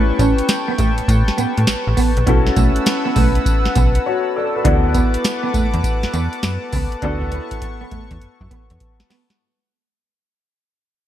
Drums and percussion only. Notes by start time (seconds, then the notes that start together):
0.19 kick, closed hi-hat, tambourine
0.38 closed hi-hat
0.49 snare, closed hi-hat, tambourine
0.78 kick, closed hi-hat, tambourine
0.98 closed hi-hat
1.08 kick, closed hi-hat, tambourine
1.28 snare
1.38 closed hi-hat, tambourine
1.58 closed hi-hat
1.67 snare, closed hi-hat, tambourine
1.97 kick, open hi-hat, tambourine
2.17 closed hi-hat
2.27 kick, closed hi-hat
2.47 snare
2.56 kick, closed hi-hat, tambourine
2.76 closed hi-hat
2.86 snare, closed hi-hat, tambourine
3.16 kick, open hi-hat, tambourine
3.35 closed hi-hat
3.46 kick, closed hi-hat, tambourine
3.65 snare
3.75 kick, closed hi-hat, tambourine
3.95 closed hi-hat
4.65 kick, closed hi-hat
4.94 kick, closed hi-hat, tambourine
5.14 closed hi-hat
5.24 snare, closed hi-hat, tambourine
5.54 kick, closed hi-hat, tambourine
5.74 closed hi-hat
5.83 kick, closed hi-hat, tambourine
6.03 snare
6.13 closed hi-hat, tambourine
6.33 closed hi-hat
6.43 snare, closed hi-hat, tambourine
6.73 kick, open hi-hat, tambourine
6.92 closed hi-hat
7.02 kick, closed hi-hat
7.22 kick
7.32 closed hi-hat
7.51 kick, closed hi-hat
7.62 kick, closed hi-hat
7.91 kick, closed hi-hat
8.11 kick, closed hi-hat
8.22 closed hi-hat
8.41 kick
8.51 kick, closed hi-hat
8.70 closed hi-hat
8.80 kick, closed hi-hat
9.00 snare
9.10 snare, open hi-hat
9.30 snare, closed hi-hat